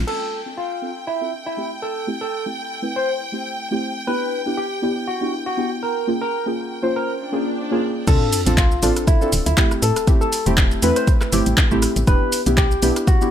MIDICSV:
0, 0, Header, 1, 8, 480
1, 0, Start_track
1, 0, Tempo, 500000
1, 71, Time_signature, 4, 2, 24, 8
1, 12775, End_track
2, 0, Start_track
2, 0, Title_t, "Violin section"
2, 0, Program_c, 0, 48
2, 73, Note_on_c, 0, 79, 77
2, 7763, Note_off_c, 0, 79, 0
2, 12775, End_track
3, 0, Start_track
3, 0, Title_t, "Tine electric piano"
3, 0, Program_c, 1, 4
3, 71, Note_on_c, 1, 69, 88
3, 382, Note_off_c, 1, 69, 0
3, 552, Note_on_c, 1, 65, 84
3, 863, Note_off_c, 1, 65, 0
3, 1030, Note_on_c, 1, 64, 79
3, 1260, Note_off_c, 1, 64, 0
3, 1405, Note_on_c, 1, 64, 81
3, 1631, Note_off_c, 1, 64, 0
3, 1751, Note_on_c, 1, 69, 79
3, 1981, Note_off_c, 1, 69, 0
3, 2124, Note_on_c, 1, 69, 82
3, 2351, Note_off_c, 1, 69, 0
3, 2844, Note_on_c, 1, 72, 79
3, 2987, Note_off_c, 1, 72, 0
3, 3911, Note_on_c, 1, 71, 90
3, 4222, Note_off_c, 1, 71, 0
3, 4391, Note_on_c, 1, 67, 83
3, 4702, Note_off_c, 1, 67, 0
3, 4872, Note_on_c, 1, 66, 83
3, 5101, Note_off_c, 1, 66, 0
3, 5246, Note_on_c, 1, 66, 88
3, 5472, Note_off_c, 1, 66, 0
3, 5594, Note_on_c, 1, 70, 83
3, 5822, Note_off_c, 1, 70, 0
3, 5965, Note_on_c, 1, 70, 89
3, 6192, Note_off_c, 1, 70, 0
3, 6684, Note_on_c, 1, 70, 85
3, 6827, Note_off_c, 1, 70, 0
3, 7752, Note_on_c, 1, 69, 101
3, 8063, Note_off_c, 1, 69, 0
3, 8233, Note_on_c, 1, 65, 92
3, 8543, Note_off_c, 1, 65, 0
3, 8712, Note_on_c, 1, 64, 91
3, 8941, Note_off_c, 1, 64, 0
3, 9085, Note_on_c, 1, 64, 94
3, 9312, Note_off_c, 1, 64, 0
3, 9430, Note_on_c, 1, 69, 90
3, 9660, Note_off_c, 1, 69, 0
3, 9804, Note_on_c, 1, 69, 97
3, 10031, Note_off_c, 1, 69, 0
3, 10525, Note_on_c, 1, 72, 89
3, 10667, Note_off_c, 1, 72, 0
3, 11591, Note_on_c, 1, 71, 99
3, 11902, Note_off_c, 1, 71, 0
3, 12071, Note_on_c, 1, 67, 96
3, 12383, Note_off_c, 1, 67, 0
3, 12551, Note_on_c, 1, 66, 95
3, 12775, Note_off_c, 1, 66, 0
3, 12775, End_track
4, 0, Start_track
4, 0, Title_t, "Synth stab"
4, 0, Program_c, 2, 62
4, 67, Note_on_c, 2, 60, 78
4, 70, Note_on_c, 2, 62, 74
4, 73, Note_on_c, 2, 65, 73
4, 410, Note_off_c, 2, 60, 0
4, 412, Note_off_c, 2, 62, 0
4, 413, Note_off_c, 2, 65, 0
4, 440, Note_on_c, 2, 60, 73
4, 444, Note_on_c, 2, 62, 64
4, 446, Note_on_c, 2, 65, 65
4, 449, Note_on_c, 2, 69, 78
4, 568, Note_off_c, 2, 60, 0
4, 569, Note_off_c, 2, 62, 0
4, 571, Note_off_c, 2, 65, 0
4, 572, Note_off_c, 2, 69, 0
4, 786, Note_on_c, 2, 60, 88
4, 789, Note_on_c, 2, 62, 79
4, 792, Note_on_c, 2, 65, 83
4, 795, Note_on_c, 2, 69, 99
4, 1130, Note_off_c, 2, 60, 0
4, 1131, Note_off_c, 2, 62, 0
4, 1133, Note_off_c, 2, 65, 0
4, 1134, Note_off_c, 2, 69, 0
4, 1160, Note_on_c, 2, 60, 78
4, 1163, Note_on_c, 2, 62, 69
4, 1166, Note_on_c, 2, 65, 70
4, 1169, Note_on_c, 2, 69, 85
4, 1484, Note_off_c, 2, 60, 0
4, 1485, Note_off_c, 2, 62, 0
4, 1486, Note_off_c, 2, 65, 0
4, 1488, Note_off_c, 2, 69, 0
4, 1507, Note_on_c, 2, 57, 75
4, 1510, Note_on_c, 2, 60, 70
4, 1512, Note_on_c, 2, 64, 68
4, 1515, Note_on_c, 2, 67, 85
4, 1963, Note_off_c, 2, 57, 0
4, 1965, Note_off_c, 2, 60, 0
4, 1966, Note_off_c, 2, 64, 0
4, 1968, Note_off_c, 2, 67, 0
4, 1987, Note_on_c, 2, 57, 88
4, 1990, Note_on_c, 2, 60, 84
4, 1993, Note_on_c, 2, 64, 84
4, 1996, Note_on_c, 2, 67, 99
4, 2137, Note_off_c, 2, 57, 0
4, 2138, Note_off_c, 2, 60, 0
4, 2140, Note_off_c, 2, 64, 0
4, 2141, Note_off_c, 2, 67, 0
4, 2359, Note_on_c, 2, 57, 82
4, 2362, Note_on_c, 2, 60, 74
4, 2365, Note_on_c, 2, 64, 75
4, 2368, Note_on_c, 2, 67, 89
4, 2683, Note_off_c, 2, 57, 0
4, 2685, Note_off_c, 2, 60, 0
4, 2686, Note_off_c, 2, 64, 0
4, 2687, Note_off_c, 2, 67, 0
4, 2708, Note_on_c, 2, 57, 88
4, 2710, Note_on_c, 2, 60, 82
4, 2713, Note_on_c, 2, 64, 84
4, 2715, Note_on_c, 2, 71, 101
4, 3164, Note_off_c, 2, 57, 0
4, 3165, Note_off_c, 2, 60, 0
4, 3167, Note_off_c, 2, 64, 0
4, 3168, Note_off_c, 2, 71, 0
4, 3187, Note_on_c, 2, 57, 80
4, 3190, Note_on_c, 2, 60, 75
4, 3193, Note_on_c, 2, 64, 73
4, 3196, Note_on_c, 2, 67, 89
4, 3530, Note_off_c, 2, 57, 0
4, 3532, Note_off_c, 2, 60, 0
4, 3533, Note_off_c, 2, 64, 0
4, 3535, Note_off_c, 2, 67, 0
4, 3560, Note_on_c, 2, 57, 88
4, 3564, Note_on_c, 2, 60, 83
4, 3567, Note_on_c, 2, 64, 80
4, 3569, Note_on_c, 2, 67, 93
4, 3884, Note_off_c, 2, 57, 0
4, 3885, Note_off_c, 2, 60, 0
4, 3887, Note_off_c, 2, 64, 0
4, 3888, Note_off_c, 2, 67, 0
4, 3907, Note_on_c, 2, 59, 83
4, 3910, Note_on_c, 2, 62, 74
4, 3913, Note_on_c, 2, 64, 76
4, 3916, Note_on_c, 2, 67, 86
4, 4250, Note_off_c, 2, 59, 0
4, 4252, Note_off_c, 2, 62, 0
4, 4253, Note_off_c, 2, 64, 0
4, 4255, Note_off_c, 2, 67, 0
4, 4281, Note_on_c, 2, 59, 71
4, 4283, Note_on_c, 2, 62, 67
4, 4286, Note_on_c, 2, 64, 68
4, 4289, Note_on_c, 2, 67, 84
4, 4408, Note_off_c, 2, 59, 0
4, 4409, Note_off_c, 2, 62, 0
4, 4411, Note_off_c, 2, 64, 0
4, 4412, Note_off_c, 2, 67, 0
4, 4627, Note_on_c, 2, 59, 91
4, 4630, Note_on_c, 2, 62, 81
4, 4632, Note_on_c, 2, 64, 86
4, 4635, Note_on_c, 2, 67, 100
4, 4970, Note_off_c, 2, 59, 0
4, 4972, Note_off_c, 2, 62, 0
4, 4973, Note_off_c, 2, 64, 0
4, 4974, Note_off_c, 2, 67, 0
4, 5000, Note_on_c, 2, 59, 75
4, 5002, Note_on_c, 2, 62, 68
4, 5006, Note_on_c, 2, 64, 70
4, 5008, Note_on_c, 2, 67, 82
4, 5324, Note_off_c, 2, 59, 0
4, 5325, Note_off_c, 2, 62, 0
4, 5326, Note_off_c, 2, 64, 0
4, 5327, Note_off_c, 2, 67, 0
4, 5348, Note_on_c, 2, 59, 78
4, 5351, Note_on_c, 2, 62, 72
4, 5353, Note_on_c, 2, 64, 73
4, 5356, Note_on_c, 2, 67, 84
4, 5804, Note_off_c, 2, 59, 0
4, 5805, Note_off_c, 2, 62, 0
4, 5807, Note_off_c, 2, 64, 0
4, 5808, Note_off_c, 2, 67, 0
4, 5828, Note_on_c, 2, 58, 86
4, 5830, Note_on_c, 2, 61, 83
4, 5834, Note_on_c, 2, 65, 83
4, 5836, Note_on_c, 2, 68, 96
4, 5978, Note_off_c, 2, 58, 0
4, 5979, Note_off_c, 2, 61, 0
4, 5980, Note_off_c, 2, 65, 0
4, 5982, Note_off_c, 2, 68, 0
4, 6202, Note_on_c, 2, 58, 83
4, 6204, Note_on_c, 2, 61, 74
4, 6207, Note_on_c, 2, 65, 72
4, 6210, Note_on_c, 2, 68, 90
4, 6524, Note_off_c, 2, 58, 0
4, 6526, Note_off_c, 2, 61, 0
4, 6527, Note_off_c, 2, 65, 0
4, 6529, Note_off_c, 2, 68, 0
4, 6549, Note_on_c, 2, 58, 90
4, 6551, Note_on_c, 2, 61, 87
4, 6554, Note_on_c, 2, 65, 82
4, 6557, Note_on_c, 2, 72, 104
4, 7004, Note_off_c, 2, 58, 0
4, 7006, Note_off_c, 2, 61, 0
4, 7007, Note_off_c, 2, 65, 0
4, 7009, Note_off_c, 2, 72, 0
4, 7028, Note_on_c, 2, 58, 84
4, 7031, Note_on_c, 2, 61, 73
4, 7034, Note_on_c, 2, 65, 74
4, 7037, Note_on_c, 2, 68, 87
4, 7371, Note_off_c, 2, 58, 0
4, 7372, Note_off_c, 2, 61, 0
4, 7374, Note_off_c, 2, 65, 0
4, 7375, Note_off_c, 2, 68, 0
4, 7401, Note_on_c, 2, 58, 87
4, 7404, Note_on_c, 2, 61, 81
4, 7406, Note_on_c, 2, 65, 80
4, 7409, Note_on_c, 2, 68, 101
4, 7724, Note_off_c, 2, 58, 0
4, 7725, Note_off_c, 2, 61, 0
4, 7727, Note_off_c, 2, 65, 0
4, 7728, Note_off_c, 2, 68, 0
4, 7748, Note_on_c, 2, 60, 84
4, 7751, Note_on_c, 2, 62, 80
4, 7753, Note_on_c, 2, 65, 77
4, 7756, Note_on_c, 2, 69, 91
4, 8091, Note_off_c, 2, 60, 0
4, 8092, Note_off_c, 2, 62, 0
4, 8094, Note_off_c, 2, 65, 0
4, 8095, Note_off_c, 2, 69, 0
4, 8121, Note_on_c, 2, 60, 79
4, 8123, Note_on_c, 2, 62, 70
4, 8126, Note_on_c, 2, 65, 73
4, 8129, Note_on_c, 2, 69, 82
4, 8248, Note_off_c, 2, 60, 0
4, 8249, Note_off_c, 2, 62, 0
4, 8251, Note_off_c, 2, 65, 0
4, 8252, Note_off_c, 2, 69, 0
4, 8467, Note_on_c, 2, 60, 92
4, 8470, Note_on_c, 2, 62, 91
4, 8472, Note_on_c, 2, 65, 87
4, 8475, Note_on_c, 2, 69, 106
4, 8810, Note_off_c, 2, 60, 0
4, 8812, Note_off_c, 2, 62, 0
4, 8813, Note_off_c, 2, 65, 0
4, 8815, Note_off_c, 2, 69, 0
4, 8841, Note_on_c, 2, 60, 80
4, 8844, Note_on_c, 2, 62, 74
4, 8846, Note_on_c, 2, 65, 74
4, 8849, Note_on_c, 2, 69, 87
4, 9164, Note_off_c, 2, 60, 0
4, 9165, Note_off_c, 2, 62, 0
4, 9167, Note_off_c, 2, 65, 0
4, 9168, Note_off_c, 2, 69, 0
4, 9188, Note_on_c, 2, 57, 82
4, 9190, Note_on_c, 2, 60, 76
4, 9193, Note_on_c, 2, 64, 76
4, 9196, Note_on_c, 2, 67, 89
4, 9644, Note_off_c, 2, 57, 0
4, 9645, Note_off_c, 2, 60, 0
4, 9647, Note_off_c, 2, 64, 0
4, 9648, Note_off_c, 2, 67, 0
4, 9668, Note_on_c, 2, 57, 96
4, 9671, Note_on_c, 2, 60, 88
4, 9674, Note_on_c, 2, 64, 87
4, 9677, Note_on_c, 2, 67, 102
4, 9818, Note_off_c, 2, 57, 0
4, 9819, Note_off_c, 2, 60, 0
4, 9821, Note_off_c, 2, 64, 0
4, 9822, Note_off_c, 2, 67, 0
4, 10040, Note_on_c, 2, 57, 88
4, 10043, Note_on_c, 2, 60, 79
4, 10045, Note_on_c, 2, 64, 79
4, 10048, Note_on_c, 2, 67, 96
4, 10363, Note_off_c, 2, 57, 0
4, 10365, Note_off_c, 2, 60, 0
4, 10366, Note_off_c, 2, 64, 0
4, 10367, Note_off_c, 2, 67, 0
4, 10387, Note_on_c, 2, 57, 96
4, 10391, Note_on_c, 2, 60, 87
4, 10393, Note_on_c, 2, 64, 91
4, 10396, Note_on_c, 2, 71, 107
4, 10844, Note_off_c, 2, 57, 0
4, 10845, Note_off_c, 2, 60, 0
4, 10847, Note_off_c, 2, 64, 0
4, 10848, Note_off_c, 2, 71, 0
4, 10867, Note_on_c, 2, 57, 84
4, 10870, Note_on_c, 2, 60, 78
4, 10873, Note_on_c, 2, 64, 80
4, 10877, Note_on_c, 2, 67, 96
4, 11211, Note_off_c, 2, 57, 0
4, 11212, Note_off_c, 2, 60, 0
4, 11214, Note_off_c, 2, 64, 0
4, 11215, Note_off_c, 2, 67, 0
4, 11240, Note_on_c, 2, 57, 96
4, 11243, Note_on_c, 2, 60, 82
4, 11246, Note_on_c, 2, 64, 88
4, 11249, Note_on_c, 2, 67, 104
4, 11564, Note_off_c, 2, 57, 0
4, 11565, Note_off_c, 2, 60, 0
4, 11566, Note_off_c, 2, 64, 0
4, 11568, Note_off_c, 2, 67, 0
4, 11587, Note_on_c, 2, 59, 85
4, 11590, Note_on_c, 2, 62, 80
4, 11593, Note_on_c, 2, 64, 76
4, 11596, Note_on_c, 2, 67, 94
4, 11931, Note_off_c, 2, 59, 0
4, 11932, Note_off_c, 2, 62, 0
4, 11933, Note_off_c, 2, 64, 0
4, 11935, Note_off_c, 2, 67, 0
4, 11961, Note_on_c, 2, 59, 78
4, 11964, Note_on_c, 2, 62, 71
4, 11966, Note_on_c, 2, 64, 70
4, 11969, Note_on_c, 2, 67, 88
4, 12088, Note_off_c, 2, 59, 0
4, 12089, Note_off_c, 2, 62, 0
4, 12091, Note_off_c, 2, 64, 0
4, 12092, Note_off_c, 2, 67, 0
4, 12307, Note_on_c, 2, 59, 97
4, 12310, Note_on_c, 2, 62, 89
4, 12312, Note_on_c, 2, 64, 92
4, 12315, Note_on_c, 2, 67, 105
4, 12651, Note_off_c, 2, 59, 0
4, 12652, Note_off_c, 2, 62, 0
4, 12653, Note_off_c, 2, 64, 0
4, 12654, Note_off_c, 2, 67, 0
4, 12682, Note_on_c, 2, 59, 81
4, 12684, Note_on_c, 2, 62, 75
4, 12687, Note_on_c, 2, 64, 71
4, 12690, Note_on_c, 2, 67, 88
4, 12775, Note_off_c, 2, 59, 0
4, 12775, Note_off_c, 2, 62, 0
4, 12775, Note_off_c, 2, 64, 0
4, 12775, Note_off_c, 2, 67, 0
4, 12775, End_track
5, 0, Start_track
5, 0, Title_t, "FM bass"
5, 0, Program_c, 3, 39
5, 7752, Note_on_c, 3, 38, 100
5, 7839, Note_off_c, 3, 38, 0
5, 8126, Note_on_c, 3, 33, 102
5, 8413, Note_off_c, 3, 33, 0
5, 8472, Note_on_c, 3, 33, 90
5, 8559, Note_off_c, 3, 33, 0
5, 8953, Note_on_c, 3, 26, 93
5, 9039, Note_off_c, 3, 26, 0
5, 9086, Note_on_c, 3, 38, 94
5, 9155, Note_off_c, 3, 38, 0
5, 9432, Note_on_c, 3, 45, 90
5, 9519, Note_off_c, 3, 45, 0
5, 10045, Note_on_c, 3, 28, 104
5, 10332, Note_off_c, 3, 28, 0
5, 10392, Note_on_c, 3, 40, 93
5, 10479, Note_off_c, 3, 40, 0
5, 10872, Note_on_c, 3, 31, 106
5, 10959, Note_off_c, 3, 31, 0
5, 11006, Note_on_c, 3, 33, 89
5, 11075, Note_off_c, 3, 33, 0
5, 11246, Note_on_c, 3, 33, 100
5, 11393, Note_off_c, 3, 33, 0
5, 11484, Note_on_c, 3, 33, 94
5, 11554, Note_off_c, 3, 33, 0
5, 11592, Note_on_c, 3, 28, 96
5, 11678, Note_off_c, 3, 28, 0
5, 11965, Note_on_c, 3, 35, 104
5, 12252, Note_off_c, 3, 35, 0
5, 12311, Note_on_c, 3, 35, 93
5, 12398, Note_off_c, 3, 35, 0
5, 12775, End_track
6, 0, Start_track
6, 0, Title_t, "Sub drop"
6, 0, Program_c, 4, 103
6, 7752, Note_on_c, 4, 60, 79
6, 9671, Note_off_c, 4, 60, 0
6, 12775, End_track
7, 0, Start_track
7, 0, Title_t, "Swell"
7, 0, Program_c, 5, 103
7, 6791, Note_on_c, 5, 60, 73
7, 7751, Note_off_c, 5, 60, 0
7, 12775, End_track
8, 0, Start_track
8, 0, Title_t, "Drums"
8, 73, Note_on_c, 9, 49, 77
8, 169, Note_off_c, 9, 49, 0
8, 7752, Note_on_c, 9, 36, 119
8, 7752, Note_on_c, 9, 42, 57
8, 7752, Note_on_c, 9, 57, 104
8, 7752, Note_on_c, 9, 82, 45
8, 7848, Note_off_c, 9, 36, 0
8, 7848, Note_off_c, 9, 42, 0
8, 7848, Note_off_c, 9, 57, 0
8, 7848, Note_off_c, 9, 82, 0
8, 7993, Note_on_c, 9, 46, 104
8, 7993, Note_on_c, 9, 82, 77
8, 8089, Note_off_c, 9, 46, 0
8, 8089, Note_off_c, 9, 82, 0
8, 8126, Note_on_c, 9, 42, 64
8, 8126, Note_on_c, 9, 82, 33
8, 8222, Note_off_c, 9, 42, 0
8, 8222, Note_off_c, 9, 82, 0
8, 8232, Note_on_c, 9, 36, 114
8, 8233, Note_on_c, 9, 39, 122
8, 8234, Note_on_c, 9, 42, 55
8, 8234, Note_on_c, 9, 82, 44
8, 8328, Note_off_c, 9, 36, 0
8, 8329, Note_off_c, 9, 39, 0
8, 8330, Note_off_c, 9, 42, 0
8, 8330, Note_off_c, 9, 82, 0
8, 8367, Note_on_c, 9, 82, 31
8, 8463, Note_off_c, 9, 82, 0
8, 8472, Note_on_c, 9, 46, 95
8, 8473, Note_on_c, 9, 82, 77
8, 8568, Note_off_c, 9, 46, 0
8, 8569, Note_off_c, 9, 82, 0
8, 8606, Note_on_c, 9, 37, 62
8, 8606, Note_on_c, 9, 42, 67
8, 8607, Note_on_c, 9, 82, 32
8, 8702, Note_off_c, 9, 37, 0
8, 8702, Note_off_c, 9, 42, 0
8, 8703, Note_off_c, 9, 82, 0
8, 8712, Note_on_c, 9, 36, 118
8, 8713, Note_on_c, 9, 42, 56
8, 8713, Note_on_c, 9, 82, 43
8, 8808, Note_off_c, 9, 36, 0
8, 8809, Note_off_c, 9, 42, 0
8, 8809, Note_off_c, 9, 82, 0
8, 8846, Note_on_c, 9, 82, 30
8, 8942, Note_off_c, 9, 82, 0
8, 8951, Note_on_c, 9, 46, 99
8, 8952, Note_on_c, 9, 82, 76
8, 9047, Note_off_c, 9, 46, 0
8, 9048, Note_off_c, 9, 82, 0
8, 9085, Note_on_c, 9, 42, 68
8, 9085, Note_on_c, 9, 82, 32
8, 9181, Note_off_c, 9, 42, 0
8, 9181, Note_off_c, 9, 82, 0
8, 9192, Note_on_c, 9, 36, 118
8, 9192, Note_on_c, 9, 39, 125
8, 9192, Note_on_c, 9, 42, 55
8, 9192, Note_on_c, 9, 82, 45
8, 9288, Note_off_c, 9, 36, 0
8, 9288, Note_off_c, 9, 39, 0
8, 9288, Note_off_c, 9, 42, 0
8, 9288, Note_off_c, 9, 82, 0
8, 9325, Note_on_c, 9, 37, 81
8, 9325, Note_on_c, 9, 82, 33
8, 9421, Note_off_c, 9, 37, 0
8, 9421, Note_off_c, 9, 82, 0
8, 9432, Note_on_c, 9, 46, 95
8, 9432, Note_on_c, 9, 82, 80
8, 9528, Note_off_c, 9, 46, 0
8, 9528, Note_off_c, 9, 82, 0
8, 9566, Note_on_c, 9, 37, 78
8, 9566, Note_on_c, 9, 42, 70
8, 9566, Note_on_c, 9, 82, 32
8, 9662, Note_off_c, 9, 37, 0
8, 9662, Note_off_c, 9, 42, 0
8, 9662, Note_off_c, 9, 82, 0
8, 9671, Note_on_c, 9, 36, 125
8, 9671, Note_on_c, 9, 42, 55
8, 9672, Note_on_c, 9, 82, 43
8, 9767, Note_off_c, 9, 36, 0
8, 9767, Note_off_c, 9, 42, 0
8, 9768, Note_off_c, 9, 82, 0
8, 9805, Note_on_c, 9, 82, 29
8, 9901, Note_off_c, 9, 82, 0
8, 9912, Note_on_c, 9, 46, 106
8, 9912, Note_on_c, 9, 82, 74
8, 10008, Note_off_c, 9, 46, 0
8, 10008, Note_off_c, 9, 82, 0
8, 10045, Note_on_c, 9, 42, 66
8, 10045, Note_on_c, 9, 82, 32
8, 10141, Note_off_c, 9, 42, 0
8, 10141, Note_off_c, 9, 82, 0
8, 10151, Note_on_c, 9, 39, 125
8, 10151, Note_on_c, 9, 42, 52
8, 10151, Note_on_c, 9, 82, 43
8, 10152, Note_on_c, 9, 36, 122
8, 10247, Note_off_c, 9, 39, 0
8, 10247, Note_off_c, 9, 42, 0
8, 10247, Note_off_c, 9, 82, 0
8, 10248, Note_off_c, 9, 36, 0
8, 10285, Note_on_c, 9, 82, 31
8, 10381, Note_off_c, 9, 82, 0
8, 10391, Note_on_c, 9, 46, 96
8, 10392, Note_on_c, 9, 82, 76
8, 10487, Note_off_c, 9, 46, 0
8, 10488, Note_off_c, 9, 82, 0
8, 10524, Note_on_c, 9, 37, 63
8, 10524, Note_on_c, 9, 42, 66
8, 10525, Note_on_c, 9, 82, 32
8, 10620, Note_off_c, 9, 37, 0
8, 10620, Note_off_c, 9, 42, 0
8, 10621, Note_off_c, 9, 82, 0
8, 10631, Note_on_c, 9, 36, 126
8, 10631, Note_on_c, 9, 42, 51
8, 10632, Note_on_c, 9, 82, 43
8, 10727, Note_off_c, 9, 36, 0
8, 10727, Note_off_c, 9, 42, 0
8, 10728, Note_off_c, 9, 82, 0
8, 10764, Note_on_c, 9, 37, 83
8, 10764, Note_on_c, 9, 39, 39
8, 10764, Note_on_c, 9, 82, 30
8, 10860, Note_off_c, 9, 37, 0
8, 10860, Note_off_c, 9, 39, 0
8, 10860, Note_off_c, 9, 82, 0
8, 10872, Note_on_c, 9, 46, 103
8, 10872, Note_on_c, 9, 82, 77
8, 10968, Note_off_c, 9, 46, 0
8, 10968, Note_off_c, 9, 82, 0
8, 11004, Note_on_c, 9, 42, 66
8, 11004, Note_on_c, 9, 82, 33
8, 11100, Note_off_c, 9, 42, 0
8, 11100, Note_off_c, 9, 82, 0
8, 11111, Note_on_c, 9, 39, 126
8, 11111, Note_on_c, 9, 42, 55
8, 11112, Note_on_c, 9, 36, 120
8, 11112, Note_on_c, 9, 82, 44
8, 11207, Note_off_c, 9, 39, 0
8, 11207, Note_off_c, 9, 42, 0
8, 11208, Note_off_c, 9, 36, 0
8, 11208, Note_off_c, 9, 82, 0
8, 11244, Note_on_c, 9, 82, 32
8, 11340, Note_off_c, 9, 82, 0
8, 11351, Note_on_c, 9, 37, 81
8, 11351, Note_on_c, 9, 46, 96
8, 11351, Note_on_c, 9, 82, 76
8, 11447, Note_off_c, 9, 37, 0
8, 11447, Note_off_c, 9, 46, 0
8, 11447, Note_off_c, 9, 82, 0
8, 11484, Note_on_c, 9, 42, 67
8, 11485, Note_on_c, 9, 82, 34
8, 11580, Note_off_c, 9, 42, 0
8, 11581, Note_off_c, 9, 82, 0
8, 11591, Note_on_c, 9, 36, 125
8, 11591, Note_on_c, 9, 42, 52
8, 11591, Note_on_c, 9, 82, 43
8, 11687, Note_off_c, 9, 36, 0
8, 11687, Note_off_c, 9, 42, 0
8, 11687, Note_off_c, 9, 82, 0
8, 11830, Note_on_c, 9, 46, 108
8, 11831, Note_on_c, 9, 82, 75
8, 11926, Note_off_c, 9, 46, 0
8, 11927, Note_off_c, 9, 82, 0
8, 11965, Note_on_c, 9, 42, 62
8, 11965, Note_on_c, 9, 82, 31
8, 12061, Note_off_c, 9, 42, 0
8, 12061, Note_off_c, 9, 82, 0
8, 12071, Note_on_c, 9, 36, 122
8, 12071, Note_on_c, 9, 39, 118
8, 12072, Note_on_c, 9, 42, 53
8, 12072, Note_on_c, 9, 82, 42
8, 12167, Note_off_c, 9, 36, 0
8, 12167, Note_off_c, 9, 39, 0
8, 12168, Note_off_c, 9, 42, 0
8, 12168, Note_off_c, 9, 82, 0
8, 12205, Note_on_c, 9, 82, 31
8, 12301, Note_off_c, 9, 82, 0
8, 12311, Note_on_c, 9, 46, 98
8, 12311, Note_on_c, 9, 82, 77
8, 12407, Note_off_c, 9, 46, 0
8, 12407, Note_off_c, 9, 82, 0
8, 12445, Note_on_c, 9, 37, 65
8, 12445, Note_on_c, 9, 42, 63
8, 12445, Note_on_c, 9, 82, 32
8, 12541, Note_off_c, 9, 37, 0
8, 12541, Note_off_c, 9, 42, 0
8, 12541, Note_off_c, 9, 82, 0
8, 12551, Note_on_c, 9, 36, 127
8, 12552, Note_on_c, 9, 42, 51
8, 12553, Note_on_c, 9, 82, 44
8, 12647, Note_off_c, 9, 36, 0
8, 12648, Note_off_c, 9, 42, 0
8, 12649, Note_off_c, 9, 82, 0
8, 12686, Note_on_c, 9, 82, 30
8, 12775, Note_off_c, 9, 82, 0
8, 12775, End_track
0, 0, End_of_file